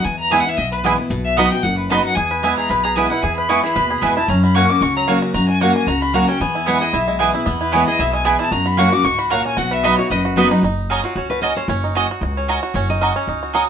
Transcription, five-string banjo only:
0.32 B3 E4 G#4
0.85 B3 E4 G#4
1.39 B3 D#4 F#4
1.92 B3 D#4 F#4
2.17 G#4
2.31 B4
2.44 E4
2.58 G#4
2.71 B4
2.85 G#4
2.97 B4
3.12 E4
3.24 G#4
3.38 B4
3.49 E4
3.64 G#4
3.76 B4
3.90 G#4
4.02 B4
4.17 E4
4.30 C#4
4.44 F#4
4.56 C#4
4.70 F#4
4.83 F#4
4.97 F#3
5.08 F#4
5.22 F#4
5.34 F#4
5.49 F#4
5.61 F#4
5.76 F#4
5.88 F#4
6.02 F#4
6.14 F#4
6.29 C#4
6.41 B3
6.55 E4
6.67 B3
6.81 G#4
6.93 E4
7.08 G#3
7.20 G#4
7.34 E4
7.46 B3
7.61 E4
7.73 B3
7.88 G#4
8.00 E4
8.13 G#3
8.25 G#4
8.39 E4
8.52 F#4
8.66 F#4
8.79 F#4
8.93 F#4
9.05 F#4
9.19 F#4
9.31 F#4
9.46 C#4
9.57 F#4
9.71 B4
9.84 D#4
9.99 F#4
10.11 B4
10.25 F#4
10.37 B4
10.51 D#4
10.64 D#4
10.91 C#4
11.05 F#4
11.17 C#4
11.31 F#4
11.43 F#4
11.57 C#4
11.69 C#4
11.84 D#4
11.97 F#4
12.11 F#4
12.23 F#4
12.37 C#4
12.49 F#4
12.63 F#4
12.76 C#4
12.90 D#4
13.02 F#4
13.16 C#4
13.29 D#4
13.43 F#4
13.55 F#4

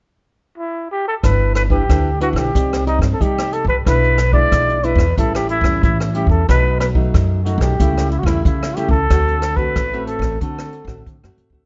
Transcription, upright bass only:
1.23 G1
1.89 D2
2.33 B1
2.55 C2
2.99 G2
3.21 C3
3.65 C2
3.86 B1
4.52 B1
4.95 E2
5.18 A1
5.61 E2
5.83 A2
6.27 E2
6.49 B1
7.14 F#2
7.58 B1
7.80 C#2
8.23 E2
8.45 C#3
8.89 C#2
9.10 D2
9.76 A1
10.19 A1
10.41 D3
10.85 A1
11.06 D3
11.24 F#2
11.37 E2
11.50 D2

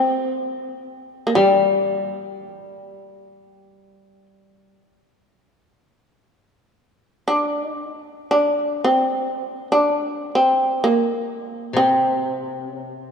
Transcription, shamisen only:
Already playing: C4
1.27 A#3
1.35 G3
7.28 D4
8.31 D4
8.84 C4
9.72 D4
10.35 C4
10.84 A#3
11.77 C4
12.66 C#4
12.90 C4

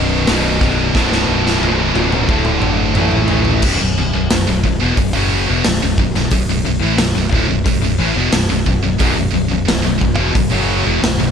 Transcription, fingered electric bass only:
Already playing: B0
0.29 B0
0.95 B0
1.29 B0
1.61 B0
1.96 C#1
2.28 D1
2.62 G#1
2.95 A1
3.30 A1
3.62 B0
3.81 B0
3.98 B0
4.14 B0
4.32 B0
4.48 B0
4.64 B0
4.83 E1
4.97 B0
5.16 F#1
5.50 E1
5.66 B0
5.82 B0
5.98 B0
6.17 B0
6.32 B0
6.50 B0
6.67 B0
6.83 A1
6.99 B0
7.16 B0
7.32 D1
7.50 B0
7.66 B0
7.82 B0
8.00 A1
8.17 E1
8.33 B0
8.50 B0
8.67 B0
8.85 B0
9.00 B0
9.18 B0
9.33 B0
9.50 B0
9.69 B0
9.85 B0
10.02 B0
10.19 E1
10.35 B0
10.53 F#1
10.87 E1
11.03 B0
11.20 B0

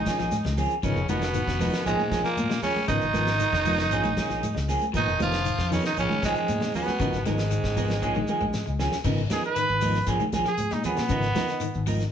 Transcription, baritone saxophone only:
Already playing: D#3
0.84 C#3
1.09 B2
1.85 G#2
2.24 A#2
2.62 C#3
2.88 D#3
4.99 D#3
5.23 F3
5.74 C#3
5.87 D#3
6.00 C#3
6.26 G#2
6.76 B2
7.28 G#2

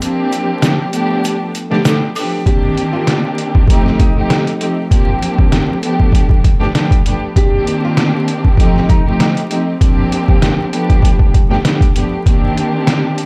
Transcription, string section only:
0.00 F3 A#3 C4 D4 G4
0.92 F3 A3 B3 D4 G4
1.69 F3 A3 B3 D4 G4
1.84 F3 A3 B3 D4 G4
2.16 F3 A3 B3 D4 G4
2.47 D#3 A#3 C4 D4 G4
3.68 F3 A3 C4 D#4 G4
4.16 F3 A3 C4 D#4 G4
4.60 F3 A3 C4 D#4 G4
4.90 F3 A#3 C4 D4 G4
5.82 F3 A3 B3 D4 G4
6.59 F3 A3 B3 D4 G4
6.74 F3 A3 B3 D4 G4
7.05 F3 A3 B3 D4 G4
7.36 D#3 A#3 C4 D4 G4
8.58 F3 A3 C4 D#4 G4
9.06 F3 A3 C4 D#4 G4
9.50 F3 A3 C4 D#4 G4
9.80 F3 A#3 C4 D4 G4
10.72 F3 A3 B3 D4 G4
11.49 F3 A3 B3 D4 G4
11.64 F3 A3 B3 D4 G4
11.96 F3 A3 B3 D4 G4
12.26 D#3 A#3 C4 D4 G4

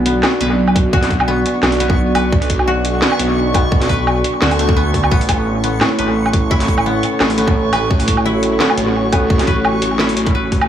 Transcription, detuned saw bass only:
Already playing: B1
0.41 B1
1.63 B1
2.15 B1
2.32 B1
3.20 B1
4.42 D2
5.11 A1
5.99 A1
7.21 A1
7.73 A1
7.91 A1
8.78 A1
9.82 A1
10.34 A1

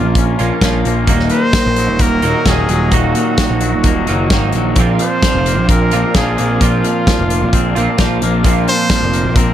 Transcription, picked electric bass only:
0.04 A#1
0.40 A#1
0.61 A#1
0.86 A#1
1.08 D#1
1.66 A#1
1.90 D#1
2.23 D#1
2.46 D#1
2.69 D#1
2.92 D#1
3.50 A#1
3.75 D#1
4.09 F#1
4.30 G#1
4.55 A#1
4.77 A#1
5.35 F1
5.60 A#1
5.94 A#1
6.15 A#1
6.40 A#1
6.61 A#1
7.19 F1
7.43 A#1
7.77 A#1
7.99 A#1
8.23 A#1
8.45 A#1
9.03 F1
9.24 A#1

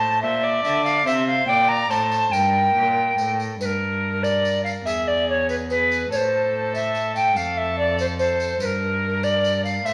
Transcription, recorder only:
Already playing: A5
0.22 E5
0.64 E5
0.85 F5
1.06 E5
1.28 F5
1.47 G5
1.69 A#5
1.90 A5
2.32 G5
3.61 B4
3.65 A#4
4.23 D5
4.64 F5
4.85 E5
5.08 D5
5.29 C#5
5.49 B4
5.71 B4
6.12 C5 C#5
6.75 E5
7.16 G5
7.37 F5
7.58 E5
7.79 D5
8.00 C5
8.19 C5
8.61 B4
8.66 A#4
9.24 D5
9.65 F5
9.85 E5

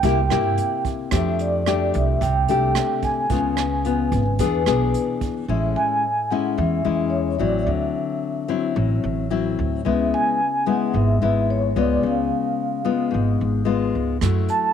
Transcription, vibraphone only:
Already playing: G5
1.16 E5
1.41 D5
1.95 E5
2.22 G5
3.04 G#5
5.50 E5
5.76 G#5
6.31 F#5
6.58 E5
7.10 C#5
7.39 D5
7.67 E5
9.86 E5
10.14 G#5
10.69 F#5
10.96 E5
11.50 C#5
11.78 D5
12.07 F5
14.50 A5

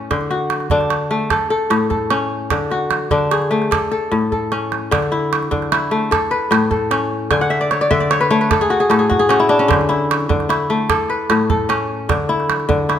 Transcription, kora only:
Already playing: A2 A3 C#4 A4
0.11 D3
0.30 F#4
0.71 D3 D4
1.11 A3
1.31 A4
1.50 A4
1.70 A2
1.90 A4
2.11 C#4
2.51 D3
2.71 F#4
3.11 D3 D4
3.31 G#4
3.51 A3
3.71 A4
3.92 A4
4.12 A2
4.32 A4
4.52 C#4
4.91 D3
5.12 E4
5.51 D3
5.72 E4
5.91 A3
6.11 A4
6.31 B4
6.51 A2
6.71 A4
6.91 C#4
7.31 D3 G#5
7.41 F#5
7.50 E5
7.61 D5
7.71 C#5
7.81 D5
7.91 D3 E5
8.00 D5
8.11 C#5
8.21 B4
8.31 A3 C#5
8.41 B4
8.51 A4
8.61 G#4
8.70 F#4
8.80 G#4
8.90 A2 A4
8.99 G#4
9.10 F#4
9.19 G#4
9.29 C#4 F#4
9.40 E4
9.49 D4
9.59 C#4
9.68 D3
9.89 E4
10.29 D3
10.49 E4
10.70 A3
10.90 A4
11.10 B4
11.30 A2
11.50 A4
11.69 C#4
12.09 D3
12.29 E4
12.69 D3
12.89 E4

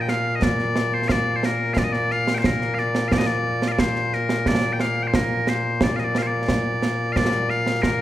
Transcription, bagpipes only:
Already playing: A#2 A#3
0.01 G5
0.09 F5
0.35 D#5
0.43 D5
0.94 C5
1.08 D5 F5
1.36 C5
1.45 A#4
1.74 F5
1.78 D5
1.84 D#5
1.92 D5
2.12 F5
2.35 C5 G5
2.46 A#4
2.74 F5
2.79 D5
3.08 F5
3.12 D5
3.18 D#5
3.26 D5
3.68 F5
3.72 D5
3.79 C5
4.14 A#4
4.47 D5
4.73 G5
4.81 F5
5.03 G5
5.07 C5
5.15 A#4
5.49 C5
5.83 D5
5.96 D#5 F5
6.04 D5
6.18 F5
6.22 C5
6.27 D5
7.12 F5
7.16 D5
7.50 F5
7.82 A#4

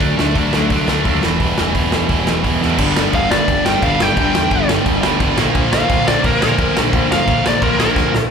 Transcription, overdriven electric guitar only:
0.00 D3 A3 D4
0.17 D3 A3 D4
0.36 D3 A3 D4
0.53 D3 A3 D4
0.72 D3 A3 D4
0.88 D3 A3 D4
1.06 D3 A3 D4
1.23 E2 B2 E3
1.40 E2 B2 E3
1.57 E2 B2 E3
1.74 E2 B2 E3
1.92 E2 B2 E3
2.09 E2 B2 E3
2.25 E2 B2 E3
2.43 E2 B2 E3
2.61 E2 B2 E3
2.77 G2 D3 G3
3.64 G2 D3 G3
3.81 G2 D3 G3
4.17 G2 D3 G3
5.02 G2 D3 G3
5.19 G2 D3 G3
5.37 A#2 F3 A#3
6.23 A#2 F3 A#3
6.42 A#2 F3 A#3
6.75 A#2 F3 A#3
7.62 A#2 F3 A#3
7.79 A#2 F3 A#3

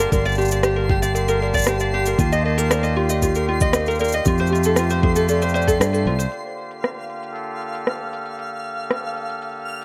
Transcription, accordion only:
Already playing: D3 A#3 G4 A5
2.19 D#3
2.60 F4
4.24 C3
4.35 A3
6.33 D3
6.39 A#3
7.31 A4

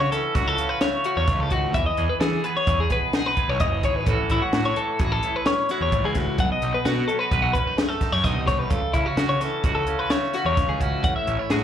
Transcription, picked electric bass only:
0.35 C#2
1.17 E2
1.28 C#2
1.39 C#2
1.74 E2
1.97 E2
2.21 E3
2.67 E2
3.49 B1
3.60 F#1
3.84 G#1
4.07 A1
4.30 A1
4.53 A2
5.00 A1
5.81 E2
5.92 A1
6.04 C#2
6.39 B1
6.62 B1
6.85 B2
7.32 B1
8.13 F#2
8.24 B1
8.36 C2
8.71 C#2
8.94 C#2
9.17 C#3
9.64 C#2
10.45 E2
10.57 C#2
10.68 C#2
11.04 A1
11.27 A1
11.50 A2

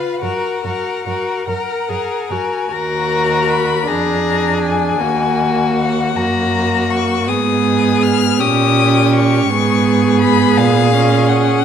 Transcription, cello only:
0.23 F#2
0.64 F#2
1.06 F#2
1.47 F#2
1.89 F#2
2.30 F#2
2.71 D#2
3.87 F2
5.00 D#2
6.16 F#2
7.28 G#2
8.38 A#2
9.49 G#2
10.58 A#2

